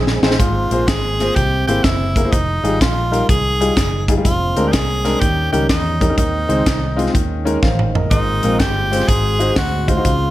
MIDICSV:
0, 0, Header, 1, 8, 480
1, 0, Start_track
1, 0, Key_signature, -4, "major"
1, 0, Tempo, 483092
1, 388, Time_signature, 4, 2, 24, 8
1, 10239, End_track
2, 0, Start_track
2, 0, Title_t, "Tenor saxophone"
2, 0, Program_c, 0, 66
2, 391, Note_on_c, 0, 65, 88
2, 871, Note_on_c, 0, 68, 106
2, 886, Note_off_c, 0, 65, 0
2, 1344, Note_on_c, 0, 67, 104
2, 1359, Note_off_c, 0, 68, 0
2, 1656, Note_off_c, 0, 67, 0
2, 1662, Note_on_c, 0, 67, 91
2, 1826, Note_on_c, 0, 64, 92
2, 1841, Note_off_c, 0, 67, 0
2, 2298, Note_on_c, 0, 63, 87
2, 2313, Note_off_c, 0, 64, 0
2, 2790, Note_on_c, 0, 65, 86
2, 2805, Note_off_c, 0, 63, 0
2, 3267, Note_off_c, 0, 65, 0
2, 3273, Note_on_c, 0, 68, 93
2, 4024, Note_off_c, 0, 68, 0
2, 4226, Note_on_c, 0, 65, 93
2, 4647, Note_on_c, 0, 67, 67
2, 4662, Note_off_c, 0, 65, 0
2, 4693, Note_on_c, 0, 68, 97
2, 4708, Note_off_c, 0, 67, 0
2, 5170, Note_on_c, 0, 67, 99
2, 5185, Note_off_c, 0, 68, 0
2, 5483, Note_off_c, 0, 67, 0
2, 5489, Note_on_c, 0, 67, 84
2, 5647, Note_off_c, 0, 67, 0
2, 5660, Note_on_c, 0, 63, 86
2, 6108, Note_off_c, 0, 63, 0
2, 6142, Note_on_c, 0, 63, 82
2, 7063, Note_off_c, 0, 63, 0
2, 8053, Note_on_c, 0, 63, 84
2, 8535, Note_on_c, 0, 67, 99
2, 8550, Note_off_c, 0, 63, 0
2, 9021, Note_on_c, 0, 68, 109
2, 9036, Note_off_c, 0, 67, 0
2, 9505, Note_off_c, 0, 68, 0
2, 9516, Note_on_c, 0, 66, 94
2, 9828, Note_on_c, 0, 65, 87
2, 9843, Note_off_c, 0, 66, 0
2, 10239, Note_off_c, 0, 65, 0
2, 10239, End_track
3, 0, Start_track
3, 0, Title_t, "Grand piano"
3, 0, Program_c, 1, 0
3, 225, Note_on_c, 1, 60, 77
3, 231, Note_on_c, 1, 63, 69
3, 231, Note_on_c, 1, 72, 84
3, 232, Note_on_c, 1, 68, 67
3, 334, Note_off_c, 1, 60, 0
3, 337, Note_off_c, 1, 63, 0
3, 337, Note_off_c, 1, 72, 0
3, 338, Note_off_c, 1, 68, 0
3, 393, Note_on_c, 1, 44, 58
3, 712, Note_on_c, 1, 58, 65
3, 713, Note_on_c, 1, 65, 61
3, 718, Note_on_c, 1, 72, 76
3, 719, Note_on_c, 1, 68, 61
3, 817, Note_off_c, 1, 58, 0
3, 818, Note_off_c, 1, 65, 0
3, 820, Note_off_c, 1, 72, 0
3, 821, Note_off_c, 1, 68, 0
3, 1145, Note_off_c, 1, 44, 0
3, 1196, Note_on_c, 1, 65, 61
3, 1197, Note_on_c, 1, 58, 69
3, 1199, Note_on_c, 1, 68, 60
3, 1207, Note_on_c, 1, 72, 72
3, 1299, Note_off_c, 1, 65, 0
3, 1300, Note_off_c, 1, 58, 0
3, 1301, Note_off_c, 1, 68, 0
3, 1304, Note_off_c, 1, 72, 0
3, 1361, Note_on_c, 1, 48, 61
3, 1669, Note_on_c, 1, 58, 68
3, 1672, Note_on_c, 1, 64, 62
3, 1674, Note_on_c, 1, 68, 66
3, 1675, Note_on_c, 1, 72, 74
3, 1775, Note_off_c, 1, 58, 0
3, 1777, Note_off_c, 1, 64, 0
3, 1778, Note_off_c, 1, 68, 0
3, 1778, Note_off_c, 1, 72, 0
3, 2109, Note_off_c, 1, 48, 0
3, 2151, Note_on_c, 1, 64, 56
3, 2153, Note_on_c, 1, 70, 69
3, 2154, Note_on_c, 1, 68, 58
3, 2155, Note_on_c, 1, 58, 64
3, 2171, Note_off_c, 1, 64, 0
3, 2173, Note_off_c, 1, 70, 0
3, 2174, Note_off_c, 1, 68, 0
3, 2175, Note_off_c, 1, 58, 0
3, 2231, Note_on_c, 1, 58, 60
3, 2232, Note_on_c, 1, 68, 57
3, 2232, Note_on_c, 1, 72, 63
3, 2237, Note_on_c, 1, 64, 53
3, 2310, Note_off_c, 1, 58, 0
3, 2310, Note_off_c, 1, 68, 0
3, 2310, Note_off_c, 1, 72, 0
3, 2313, Note_off_c, 1, 64, 0
3, 2620, Note_on_c, 1, 68, 75
3, 2621, Note_on_c, 1, 63, 61
3, 2623, Note_on_c, 1, 55, 68
3, 2626, Note_on_c, 1, 65, 59
3, 2730, Note_off_c, 1, 68, 0
3, 2731, Note_off_c, 1, 63, 0
3, 2732, Note_off_c, 1, 55, 0
3, 2733, Note_off_c, 1, 65, 0
3, 3094, Note_on_c, 1, 55, 66
3, 3095, Note_on_c, 1, 65, 63
3, 3096, Note_on_c, 1, 63, 65
3, 3100, Note_on_c, 1, 70, 72
3, 3207, Note_off_c, 1, 55, 0
3, 3207, Note_off_c, 1, 65, 0
3, 3208, Note_off_c, 1, 63, 0
3, 3210, Note_off_c, 1, 70, 0
3, 3582, Note_on_c, 1, 55, 72
3, 3583, Note_on_c, 1, 68, 79
3, 3586, Note_on_c, 1, 63, 63
3, 3587, Note_on_c, 1, 65, 64
3, 3691, Note_off_c, 1, 55, 0
3, 3691, Note_off_c, 1, 68, 0
3, 3693, Note_off_c, 1, 63, 0
3, 3693, Note_off_c, 1, 65, 0
3, 4062, Note_on_c, 1, 55, 76
3, 4067, Note_on_c, 1, 63, 67
3, 4068, Note_on_c, 1, 68, 86
3, 4070, Note_on_c, 1, 65, 67
3, 4081, Note_off_c, 1, 55, 0
3, 4087, Note_off_c, 1, 63, 0
3, 4088, Note_off_c, 1, 68, 0
3, 4090, Note_off_c, 1, 65, 0
3, 4144, Note_on_c, 1, 55, 62
3, 4146, Note_on_c, 1, 63, 53
3, 4148, Note_on_c, 1, 65, 59
3, 4150, Note_on_c, 1, 68, 68
3, 4225, Note_off_c, 1, 55, 0
3, 4226, Note_off_c, 1, 63, 0
3, 4227, Note_off_c, 1, 65, 0
3, 4228, Note_off_c, 1, 68, 0
3, 4534, Note_on_c, 1, 60, 65
3, 4535, Note_on_c, 1, 56, 72
3, 4538, Note_on_c, 1, 62, 67
3, 4539, Note_on_c, 1, 70, 75
3, 4646, Note_off_c, 1, 60, 0
3, 4647, Note_off_c, 1, 56, 0
3, 4648, Note_off_c, 1, 62, 0
3, 4649, Note_off_c, 1, 70, 0
3, 5011, Note_on_c, 1, 60, 62
3, 5014, Note_on_c, 1, 56, 70
3, 5015, Note_on_c, 1, 62, 61
3, 5015, Note_on_c, 1, 70, 76
3, 5124, Note_off_c, 1, 60, 0
3, 5126, Note_off_c, 1, 56, 0
3, 5126, Note_off_c, 1, 62, 0
3, 5127, Note_off_c, 1, 70, 0
3, 5188, Note_on_c, 1, 51, 57
3, 5489, Note_on_c, 1, 55, 65
3, 5491, Note_on_c, 1, 63, 69
3, 5493, Note_on_c, 1, 61, 66
3, 5493, Note_on_c, 1, 70, 76
3, 5604, Note_off_c, 1, 55, 0
3, 5605, Note_off_c, 1, 63, 0
3, 5605, Note_off_c, 1, 70, 0
3, 5606, Note_off_c, 1, 61, 0
3, 5941, Note_off_c, 1, 51, 0
3, 5968, Note_on_c, 1, 61, 54
3, 5970, Note_on_c, 1, 55, 61
3, 5971, Note_on_c, 1, 70, 70
3, 5974, Note_on_c, 1, 63, 57
3, 5988, Note_off_c, 1, 61, 0
3, 5990, Note_off_c, 1, 55, 0
3, 5991, Note_off_c, 1, 70, 0
3, 5994, Note_off_c, 1, 63, 0
3, 6049, Note_on_c, 1, 55, 57
3, 6054, Note_on_c, 1, 61, 57
3, 6054, Note_on_c, 1, 63, 53
3, 6055, Note_on_c, 1, 70, 69
3, 6134, Note_on_c, 1, 51, 61
3, 6137, Note_off_c, 1, 55, 0
3, 6140, Note_off_c, 1, 61, 0
3, 6140, Note_off_c, 1, 63, 0
3, 6140, Note_off_c, 1, 70, 0
3, 6447, Note_on_c, 1, 63, 64
3, 6449, Note_on_c, 1, 56, 71
3, 6449, Note_on_c, 1, 60, 66
3, 6449, Note_on_c, 1, 72, 75
3, 6563, Note_off_c, 1, 56, 0
3, 6563, Note_off_c, 1, 60, 0
3, 6563, Note_off_c, 1, 63, 0
3, 6563, Note_off_c, 1, 72, 0
3, 6894, Note_off_c, 1, 51, 0
3, 6919, Note_on_c, 1, 56, 78
3, 6922, Note_on_c, 1, 63, 68
3, 6924, Note_on_c, 1, 60, 74
3, 6927, Note_on_c, 1, 65, 90
3, 7039, Note_off_c, 1, 56, 0
3, 7040, Note_off_c, 1, 63, 0
3, 7041, Note_off_c, 1, 60, 0
3, 7043, Note_off_c, 1, 65, 0
3, 7089, Note_on_c, 1, 51, 75
3, 7404, Note_on_c, 1, 56, 81
3, 7406, Note_on_c, 1, 61, 78
3, 7409, Note_on_c, 1, 63, 75
3, 7412, Note_on_c, 1, 70, 86
3, 7521, Note_off_c, 1, 56, 0
3, 7523, Note_off_c, 1, 61, 0
3, 7524, Note_off_c, 1, 63, 0
3, 7525, Note_off_c, 1, 70, 0
3, 7575, Note_on_c, 1, 77, 59
3, 7579, Note_on_c, 1, 72, 52
3, 7853, Note_off_c, 1, 51, 0
3, 7879, Note_off_c, 1, 77, 0
3, 7881, Note_off_c, 1, 72, 0
3, 7898, Note_on_c, 1, 75, 56
3, 7903, Note_on_c, 1, 70, 48
3, 8065, Note_on_c, 1, 44, 59
3, 8355, Note_off_c, 1, 75, 0
3, 8358, Note_off_c, 1, 70, 0
3, 8380, Note_on_c, 1, 56, 66
3, 8386, Note_on_c, 1, 60, 64
3, 8387, Note_on_c, 1, 70, 75
3, 8389, Note_on_c, 1, 65, 64
3, 8490, Note_off_c, 1, 56, 0
3, 8493, Note_off_c, 1, 60, 0
3, 8494, Note_off_c, 1, 70, 0
3, 8495, Note_off_c, 1, 65, 0
3, 8822, Note_off_c, 1, 44, 0
3, 8858, Note_on_c, 1, 56, 67
3, 8860, Note_on_c, 1, 60, 57
3, 8861, Note_on_c, 1, 72, 70
3, 8862, Note_on_c, 1, 65, 61
3, 8969, Note_off_c, 1, 56, 0
3, 8970, Note_off_c, 1, 60, 0
3, 8971, Note_off_c, 1, 72, 0
3, 8972, Note_off_c, 1, 65, 0
3, 9025, Note_on_c, 1, 44, 63
3, 9332, Note_on_c, 1, 63, 64
3, 9337, Note_on_c, 1, 56, 71
3, 9339, Note_on_c, 1, 66, 68
3, 9340, Note_on_c, 1, 72, 75
3, 9447, Note_off_c, 1, 63, 0
3, 9450, Note_off_c, 1, 56, 0
3, 9450, Note_off_c, 1, 66, 0
3, 9451, Note_off_c, 1, 72, 0
3, 9783, Note_off_c, 1, 44, 0
3, 9815, Note_on_c, 1, 56, 63
3, 9816, Note_on_c, 1, 63, 55
3, 9817, Note_on_c, 1, 66, 57
3, 9822, Note_on_c, 1, 72, 71
3, 9835, Note_off_c, 1, 56, 0
3, 9835, Note_off_c, 1, 63, 0
3, 9837, Note_off_c, 1, 66, 0
3, 9842, Note_off_c, 1, 72, 0
3, 9904, Note_on_c, 1, 56, 61
3, 9906, Note_on_c, 1, 63, 53
3, 9907, Note_on_c, 1, 72, 64
3, 9908, Note_on_c, 1, 66, 58
3, 9976, Note_on_c, 1, 49, 53
3, 9987, Note_off_c, 1, 56, 0
3, 9988, Note_off_c, 1, 63, 0
3, 9989, Note_off_c, 1, 66, 0
3, 9989, Note_off_c, 1, 72, 0
3, 10239, Note_off_c, 1, 49, 0
3, 10239, End_track
4, 0, Start_track
4, 0, Title_t, "Saxophone section"
4, 0, Program_c, 2, 65
4, 0, Note_on_c, 2, 60, 64
4, 0, Note_on_c, 2, 63, 57
4, 0, Note_on_c, 2, 68, 84
4, 185, Note_off_c, 2, 60, 0
4, 186, Note_off_c, 2, 63, 0
4, 224, Note_off_c, 2, 68, 0
4, 10239, End_track
5, 0, Start_track
5, 0, Title_t, "French horn section"
5, 0, Program_c, 3, 60
5, 384, Note_on_c, 3, 53, 64
5, 388, Note_on_c, 3, 56, 65
5, 389, Note_on_c, 3, 60, 78
5, 392, Note_on_c, 3, 58, 58
5, 1335, Note_off_c, 3, 53, 0
5, 1339, Note_off_c, 3, 58, 0
5, 1346, Note_on_c, 3, 52, 63
5, 1355, Note_on_c, 3, 58, 60
5, 2287, Note_off_c, 3, 60, 0
5, 2296, Note_off_c, 3, 52, 0
5, 2300, Note_off_c, 3, 58, 0
5, 2302, Note_on_c, 3, 53, 68
5, 2306, Note_on_c, 3, 51, 65
5, 2308, Note_on_c, 3, 63, 72
5, 4185, Note_off_c, 3, 56, 0
5, 4203, Note_off_c, 3, 53, 0
5, 4205, Note_off_c, 3, 51, 0
5, 4206, Note_off_c, 3, 63, 0
5, 4216, Note_on_c, 3, 50, 69
5, 4221, Note_on_c, 3, 58, 63
5, 4223, Note_on_c, 3, 60, 74
5, 4226, Note_on_c, 3, 56, 60
5, 5170, Note_off_c, 3, 50, 0
5, 5173, Note_off_c, 3, 60, 0
5, 5175, Note_off_c, 3, 56, 0
5, 5193, Note_on_c, 3, 51, 73
5, 5193, Note_on_c, 3, 55, 67
5, 5198, Note_on_c, 3, 61, 78
5, 6123, Note_off_c, 3, 58, 0
5, 6139, Note_off_c, 3, 55, 0
5, 6141, Note_off_c, 3, 61, 0
5, 6143, Note_on_c, 3, 56, 67
5, 6143, Note_on_c, 3, 60, 62
5, 6151, Note_on_c, 3, 63, 75
5, 7089, Note_off_c, 3, 51, 0
5, 7094, Note_off_c, 3, 60, 0
5, 7102, Note_on_c, 3, 58, 63
5, 7110, Note_on_c, 3, 61, 63
5, 8045, Note_off_c, 3, 56, 0
5, 8049, Note_off_c, 3, 63, 0
5, 8058, Note_off_c, 3, 61, 0
5, 8065, Note_on_c, 3, 65, 70
5, 8066, Note_on_c, 3, 56, 68
5, 8067, Note_on_c, 3, 60, 64
5, 9006, Note_off_c, 3, 58, 0
5, 9017, Note_off_c, 3, 65, 0
5, 9032, Note_on_c, 3, 63, 64
5, 9033, Note_on_c, 3, 66, 77
5, 9982, Note_off_c, 3, 63, 0
5, 9982, Note_off_c, 3, 66, 0
5, 9985, Note_on_c, 3, 61, 61
5, 9985, Note_on_c, 3, 65, 71
5, 10239, Note_off_c, 3, 56, 0
5, 10239, Note_off_c, 3, 60, 0
5, 10239, Note_off_c, 3, 61, 0
5, 10239, Note_off_c, 3, 65, 0
5, 10239, End_track
6, 0, Start_track
6, 0, Title_t, "Tonewheel organ"
6, 0, Program_c, 4, 16
6, 0, Note_on_c, 4, 51, 65
6, 0, Note_on_c, 4, 56, 57
6, 0, Note_on_c, 4, 60, 56
6, 0, Note_on_c, 4, 68, 67
6, 347, Note_off_c, 4, 56, 0
6, 347, Note_off_c, 4, 60, 0
6, 348, Note_off_c, 4, 51, 0
6, 348, Note_off_c, 4, 68, 0
6, 10239, End_track
7, 0, Start_track
7, 0, Title_t, "Fingered electric bass"
7, 0, Program_c, 5, 33
7, 0, Note_on_c, 5, 34, 89
7, 177, Note_off_c, 5, 34, 0
7, 221, Note_on_c, 5, 33, 88
7, 362, Note_off_c, 5, 33, 0
7, 391, Note_on_c, 5, 32, 89
7, 658, Note_off_c, 5, 32, 0
7, 702, Note_on_c, 5, 34, 91
7, 870, Note_off_c, 5, 34, 0
7, 870, Note_on_c, 5, 32, 80
7, 1277, Note_off_c, 5, 32, 0
7, 1352, Note_on_c, 5, 36, 101
7, 1617, Note_off_c, 5, 36, 0
7, 1657, Note_on_c, 5, 32, 82
7, 1799, Note_off_c, 5, 32, 0
7, 1826, Note_on_c, 5, 30, 92
7, 2234, Note_off_c, 5, 30, 0
7, 2312, Note_on_c, 5, 29, 91
7, 2577, Note_off_c, 5, 29, 0
7, 2617, Note_on_c, 5, 32, 89
7, 2759, Note_off_c, 5, 32, 0
7, 2790, Note_on_c, 5, 34, 84
7, 3196, Note_off_c, 5, 34, 0
7, 3271, Note_on_c, 5, 36, 90
7, 3676, Note_off_c, 5, 36, 0
7, 3740, Note_on_c, 5, 30, 86
7, 4149, Note_off_c, 5, 30, 0
7, 4222, Note_on_c, 5, 29, 89
7, 4491, Note_off_c, 5, 29, 0
7, 4535, Note_on_c, 5, 38, 82
7, 4677, Note_off_c, 5, 38, 0
7, 4699, Note_on_c, 5, 36, 81
7, 5109, Note_off_c, 5, 36, 0
7, 5178, Note_on_c, 5, 39, 94
7, 5448, Note_off_c, 5, 39, 0
7, 5494, Note_on_c, 5, 37, 79
7, 5636, Note_off_c, 5, 37, 0
7, 5657, Note_on_c, 5, 40, 98
7, 6067, Note_off_c, 5, 40, 0
7, 6136, Note_on_c, 5, 39, 91
7, 6407, Note_off_c, 5, 39, 0
7, 6453, Note_on_c, 5, 37, 84
7, 6595, Note_off_c, 5, 37, 0
7, 6623, Note_on_c, 5, 36, 87
7, 7031, Note_off_c, 5, 36, 0
7, 7103, Note_on_c, 5, 39, 93
7, 7512, Note_off_c, 5, 39, 0
7, 7576, Note_on_c, 5, 33, 96
7, 7988, Note_off_c, 5, 33, 0
7, 8060, Note_on_c, 5, 32, 82
7, 8330, Note_off_c, 5, 32, 0
7, 8376, Note_on_c, 5, 34, 82
7, 8518, Note_off_c, 5, 34, 0
7, 8544, Note_on_c, 5, 31, 82
7, 8953, Note_off_c, 5, 31, 0
7, 9025, Note_on_c, 5, 32, 90
7, 9434, Note_off_c, 5, 32, 0
7, 9501, Note_on_c, 5, 38, 88
7, 9913, Note_off_c, 5, 38, 0
7, 9982, Note_on_c, 5, 37, 89
7, 10239, Note_off_c, 5, 37, 0
7, 10239, End_track
8, 0, Start_track
8, 0, Title_t, "Drums"
8, 72, Note_on_c, 9, 38, 72
8, 172, Note_off_c, 9, 38, 0
8, 228, Note_on_c, 9, 38, 98
8, 309, Note_off_c, 9, 38, 0
8, 309, Note_on_c, 9, 38, 90
8, 393, Note_on_c, 9, 36, 92
8, 396, Note_on_c, 9, 42, 78
8, 408, Note_off_c, 9, 38, 0
8, 493, Note_off_c, 9, 36, 0
8, 495, Note_off_c, 9, 42, 0
8, 706, Note_on_c, 9, 42, 58
8, 806, Note_off_c, 9, 42, 0
8, 872, Note_on_c, 9, 42, 87
8, 874, Note_on_c, 9, 36, 84
8, 878, Note_on_c, 9, 38, 102
8, 971, Note_off_c, 9, 42, 0
8, 973, Note_off_c, 9, 36, 0
8, 977, Note_off_c, 9, 38, 0
8, 1188, Note_on_c, 9, 38, 33
8, 1195, Note_on_c, 9, 42, 71
8, 1287, Note_off_c, 9, 38, 0
8, 1294, Note_off_c, 9, 42, 0
8, 1354, Note_on_c, 9, 36, 87
8, 1359, Note_on_c, 9, 42, 80
8, 1454, Note_off_c, 9, 36, 0
8, 1458, Note_off_c, 9, 42, 0
8, 1674, Note_on_c, 9, 42, 65
8, 1773, Note_off_c, 9, 42, 0
8, 1829, Note_on_c, 9, 36, 96
8, 1832, Note_on_c, 9, 38, 96
8, 1834, Note_on_c, 9, 42, 78
8, 1928, Note_off_c, 9, 36, 0
8, 1931, Note_off_c, 9, 38, 0
8, 1933, Note_off_c, 9, 42, 0
8, 2145, Note_on_c, 9, 36, 86
8, 2152, Note_on_c, 9, 42, 66
8, 2244, Note_off_c, 9, 36, 0
8, 2252, Note_off_c, 9, 42, 0
8, 2311, Note_on_c, 9, 36, 86
8, 2314, Note_on_c, 9, 42, 78
8, 2410, Note_off_c, 9, 36, 0
8, 2414, Note_off_c, 9, 42, 0
8, 2629, Note_on_c, 9, 42, 57
8, 2729, Note_off_c, 9, 42, 0
8, 2792, Note_on_c, 9, 36, 86
8, 2796, Note_on_c, 9, 42, 86
8, 2802, Note_on_c, 9, 38, 108
8, 2892, Note_off_c, 9, 36, 0
8, 2895, Note_off_c, 9, 42, 0
8, 2902, Note_off_c, 9, 38, 0
8, 3114, Note_on_c, 9, 42, 74
8, 3213, Note_off_c, 9, 42, 0
8, 3270, Note_on_c, 9, 36, 96
8, 3272, Note_on_c, 9, 42, 83
8, 3369, Note_off_c, 9, 36, 0
8, 3372, Note_off_c, 9, 42, 0
8, 3592, Note_on_c, 9, 42, 64
8, 3691, Note_off_c, 9, 42, 0
8, 3744, Note_on_c, 9, 36, 88
8, 3747, Note_on_c, 9, 38, 95
8, 3749, Note_on_c, 9, 42, 83
8, 3843, Note_off_c, 9, 36, 0
8, 3846, Note_off_c, 9, 38, 0
8, 3848, Note_off_c, 9, 42, 0
8, 4057, Note_on_c, 9, 36, 91
8, 4062, Note_on_c, 9, 42, 72
8, 4157, Note_off_c, 9, 36, 0
8, 4161, Note_off_c, 9, 42, 0
8, 4223, Note_on_c, 9, 36, 91
8, 4224, Note_on_c, 9, 42, 77
8, 4322, Note_off_c, 9, 36, 0
8, 4323, Note_off_c, 9, 42, 0
8, 4536, Note_on_c, 9, 42, 59
8, 4635, Note_off_c, 9, 42, 0
8, 4702, Note_on_c, 9, 42, 87
8, 4704, Note_on_c, 9, 36, 81
8, 4708, Note_on_c, 9, 38, 112
8, 4801, Note_off_c, 9, 42, 0
8, 4803, Note_off_c, 9, 36, 0
8, 4807, Note_off_c, 9, 38, 0
8, 5013, Note_on_c, 9, 38, 33
8, 5021, Note_on_c, 9, 42, 72
8, 5113, Note_off_c, 9, 38, 0
8, 5120, Note_off_c, 9, 42, 0
8, 5182, Note_on_c, 9, 36, 95
8, 5184, Note_on_c, 9, 42, 80
8, 5281, Note_off_c, 9, 36, 0
8, 5283, Note_off_c, 9, 42, 0
8, 5501, Note_on_c, 9, 42, 66
8, 5600, Note_off_c, 9, 42, 0
8, 5658, Note_on_c, 9, 36, 94
8, 5660, Note_on_c, 9, 38, 101
8, 5662, Note_on_c, 9, 42, 80
8, 5757, Note_off_c, 9, 36, 0
8, 5759, Note_off_c, 9, 38, 0
8, 5761, Note_off_c, 9, 42, 0
8, 5974, Note_on_c, 9, 36, 85
8, 5981, Note_on_c, 9, 42, 70
8, 6073, Note_off_c, 9, 36, 0
8, 6080, Note_off_c, 9, 42, 0
8, 6137, Note_on_c, 9, 42, 81
8, 6138, Note_on_c, 9, 36, 84
8, 6237, Note_off_c, 9, 36, 0
8, 6237, Note_off_c, 9, 42, 0
8, 6455, Note_on_c, 9, 42, 63
8, 6554, Note_off_c, 9, 42, 0
8, 6620, Note_on_c, 9, 42, 87
8, 6622, Note_on_c, 9, 36, 86
8, 6626, Note_on_c, 9, 38, 109
8, 6719, Note_off_c, 9, 42, 0
8, 6721, Note_off_c, 9, 36, 0
8, 6726, Note_off_c, 9, 38, 0
8, 6945, Note_on_c, 9, 42, 73
8, 7019, Note_on_c, 9, 38, 32
8, 7044, Note_off_c, 9, 42, 0
8, 7102, Note_on_c, 9, 36, 93
8, 7105, Note_on_c, 9, 42, 80
8, 7118, Note_off_c, 9, 38, 0
8, 7201, Note_off_c, 9, 36, 0
8, 7204, Note_off_c, 9, 42, 0
8, 7419, Note_on_c, 9, 42, 63
8, 7519, Note_off_c, 9, 42, 0
8, 7578, Note_on_c, 9, 36, 98
8, 7580, Note_on_c, 9, 38, 53
8, 7678, Note_off_c, 9, 36, 0
8, 7679, Note_off_c, 9, 38, 0
8, 7741, Note_on_c, 9, 45, 59
8, 7840, Note_off_c, 9, 45, 0
8, 7902, Note_on_c, 9, 43, 93
8, 8001, Note_off_c, 9, 43, 0
8, 8059, Note_on_c, 9, 42, 78
8, 8060, Note_on_c, 9, 36, 84
8, 8158, Note_off_c, 9, 42, 0
8, 8159, Note_off_c, 9, 36, 0
8, 8375, Note_on_c, 9, 42, 59
8, 8474, Note_off_c, 9, 42, 0
8, 8541, Note_on_c, 9, 42, 86
8, 8545, Note_on_c, 9, 36, 84
8, 8547, Note_on_c, 9, 38, 106
8, 8640, Note_off_c, 9, 42, 0
8, 8644, Note_off_c, 9, 36, 0
8, 8647, Note_off_c, 9, 38, 0
8, 8864, Note_on_c, 9, 38, 30
8, 8871, Note_on_c, 9, 42, 68
8, 8941, Note_off_c, 9, 38, 0
8, 8941, Note_on_c, 9, 38, 34
8, 8970, Note_off_c, 9, 42, 0
8, 9027, Note_on_c, 9, 36, 99
8, 9028, Note_on_c, 9, 42, 79
8, 9041, Note_off_c, 9, 38, 0
8, 9126, Note_off_c, 9, 36, 0
8, 9128, Note_off_c, 9, 42, 0
8, 9343, Note_on_c, 9, 42, 61
8, 9442, Note_off_c, 9, 42, 0
8, 9501, Note_on_c, 9, 38, 99
8, 9503, Note_on_c, 9, 36, 94
8, 9503, Note_on_c, 9, 42, 78
8, 9600, Note_off_c, 9, 38, 0
8, 9602, Note_off_c, 9, 36, 0
8, 9602, Note_off_c, 9, 42, 0
8, 9819, Note_on_c, 9, 36, 85
8, 9822, Note_on_c, 9, 42, 69
8, 9918, Note_off_c, 9, 36, 0
8, 9921, Note_off_c, 9, 42, 0
8, 9985, Note_on_c, 9, 36, 85
8, 9985, Note_on_c, 9, 42, 86
8, 10084, Note_off_c, 9, 36, 0
8, 10084, Note_off_c, 9, 42, 0
8, 10239, End_track
0, 0, End_of_file